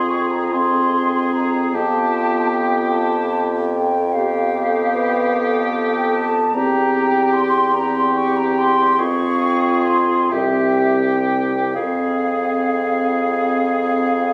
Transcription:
Already playing: F2 C4 F4 G#4 C6
0.09 C#6
0.31 A#5
0.52 C4 G#4 C6
1.34 A#5
1.73 F2 B3 F4 G4 A5
2.54 G5
2.92 A5
3.73 G5
4.13 B3 G4 F5
4.56 A4
4.94 B4
5.34 A4
5.95 G5
6.15 A5
6.54 E2 C4 G4 A#5
7.33 C6
7.74 C4 G4 A#5
7.95 C6
8.16 C#6
8.36 A#5
8.59 C6
8.98 F2 C4 F4 G#4 C#6
9.85 C6
10.30 C2 C4 G4 E5
11.24 G5
11.72 F2 C4 G#4 F5

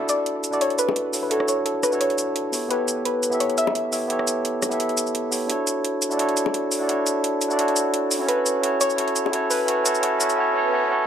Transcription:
Already playing: D4 E4 F#4 A4 D5
0.09 D5, closed hi-hat, shaker
0.26 closed hi-hat
0.44 closed hi-hat, shaker
0.51 D4 E4 F#4 A4 D5, shaker
0.56 D5
0.61 C#5, closed hi-hat
0.70 closed hi-hat
0.79 B4, closed hi-hat, shaker
0.89 high bongo
0.96 closed hi-hat
1.12 D4 E4 F#4 A4 C#5, open hi-hat, shaker
1.23 B4
1.29 D4 E4 F#4 A4, closed hi-hat
1.33 C#5
1.40 cross-stick
1.48 C#5, closed hi-hat, shaker
1.66 A4, closed hi-hat
1.83 B4, cross-stick, closed hi-hat, shaker
1.90 D4 E4 F#4 A4, shaker
1.95 C#5
2.01 C#5, closed hi-hat
2.10 closed hi-hat
2.18 closed hi-hat, shaker
2.36 closed hi-hat
2.52 B3 E4 G4 A4 C#5, open hi-hat, shaker
2.68 B3 E4 G4 A4 B4, closed hi-hat
2.73 C#5
2.88 closed hi-hat, shaker
3.05 B4, closed hi-hat
3.23 closed hi-hat, shaker
3.30 B3 E4 G4 A4, shaker
3.35 E5
3.40 C#5, closed hi-hat
3.50 closed hi-hat
3.58 E5, closed hi-hat, shaker
3.67 high bongo
3.75 closed hi-hat
3.92 B3 E4 G4 A4 C#5 E5, open hi-hat, shaker
4.08 B3 E4 G4 A4, closed hi-hat
4.12 C#5
4.19 cross-stick
4.27 closed hi-hat, shaker
4.45 closed hi-hat
4.62 cross-stick, closed hi-hat, high bongo, shaker
4.69 B3 E4 G4 A4, closed hi-hat, shaker
4.74 E5
4.80 closed hi-hat
4.89 closed hi-hat
4.97 closed hi-hat, shaker
5.07 shaker
5.15 closed hi-hat
5.31 B3 E4 G4 A4 C#5, open hi-hat, shaker
5.47 D4 E4 F#4 A4, closed hi-hat
5.52 C#5
5.67 closed hi-hat, shaker
5.85 closed hi-hat
6.02 closed hi-hat, shaker
6.09 D4 E4 F#4 A4, shaker
6.13 D4 D5
6.18 E4 F#4 A4 C#5, closed hi-hat
6.29 closed hi-hat
6.37 closed hi-hat, shaker
6.46 high bongo
6.54 closed hi-hat
6.72 open hi-hat, shaker
6.79 D4 E4 F#4 A4
6.83 D4 D5
6.88 E4 F#4 A4 C#5, closed hi-hat
7.07 closed hi-hat, shaker
7.24 closed hi-hat
7.41 closed hi-hat, shaker
7.48 D4 E4 F#4 A4, shaker
7.53 D4 D5
7.58 E4 F#4 A4 C#5, closed hi-hat
7.68 closed hi-hat
7.76 closed hi-hat, shaker
7.94 closed hi-hat
8.11 open hi-hat, shaker
8.18 C#4 E4 F#4 A4
8.23 C#4 C#5
8.27 E4 F#4 A4 B4 C#5, closed hi-hat
8.46 closed hi-hat, shaker
8.61 C#4 E4 F#4 A4, closed hi-hat
8.66 C#5
8.81 C#5, closed hi-hat, shaker
8.90 shaker
8.96 C#4 E4 F#4 A4, closed hi-hat
9.00 C#5
9.08 closed hi-hat
9.16 closed hi-hat, shaker
9.26 high bongo
9.31 C#4 E4 F#4 A4, closed hi-hat
9.35 C#5
9.50 B4, open hi-hat, shaker
9.66 C#4 E4 F#4 A4, closed hi-hat
9.70 C#5
9.83 C#4 E4 F#4 A4, closed hi-hat, shaker
9.88 C#5
9.95 shaker
10.01 C#4 E4 F#4 A4, closed hi-hat
10.05 C#5
10.18 C#4 E4 F#4 A4, closed hi-hat, shaker
10.23 C#5
10.30 closed hi-hat, shaker
10.36 C#4 E4 F#4 A4, swell
10.40 C#5
10.53 C#4 E4 F#4 A4
10.58 C#5
10.71 C#4 E4 F#4 A4
10.75 C#5
10.88 C#4 E4 F#4 A4
10.93 C#5

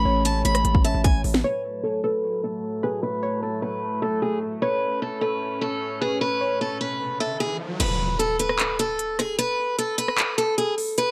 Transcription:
Already playing: G#3 A3 C#4 B5
0.05 A1 C#5
0.25 A5, closed hi-hat
0.45 A1 B5, closed hi-hat
0.55 cross-stick, closed hi-hat
0.65 A1, closed hi-hat
0.75 kick
0.84 E5 A5, closed hi-hat
0.94 A1
1.04 G#5, kick, closed hi-hat
1.24 A1, open hi-hat
1.34 snare
1.44 A2 F#3 A3 B4 C#5
1.83 A4
2.04 A4 B4
2.44 A4
2.83 G#4 B4
3.03 B4
3.23 C#5
3.43 A4
3.62 B4
4.02 A4
4.22 G#4
4.62 C#4 B4 C#5
5.02 A4
5.21 A4 B4
5.61 A4
6.01 G#4 B4
6.21 B4, riser
6.41 C#5
6.61 A4
6.81 B4
7.20 A4 E5
7.40 G#4
7.80 B4, closed hi-hat, crash, impact
8.19 A4, closed hi-hat
8.39 B4, closed hi-hat
8.49 cross-stick
8.59 clap, closed hi-hat
8.79 A4, closed hi-hat
8.99 closed hi-hat
9.19 G#4, cross-stick, closed hi-hat
9.39 B4, closed hi-hat
9.79 A4, closed hi-hat
9.98 B4, closed hi-hat
10.08 cross-stick
10.18 clap, closed hi-hat
10.38 A4, closed hi-hat
10.58 G#4, closed hi-hat
10.78 open hi-hat
10.98 B4, closed hi-hat

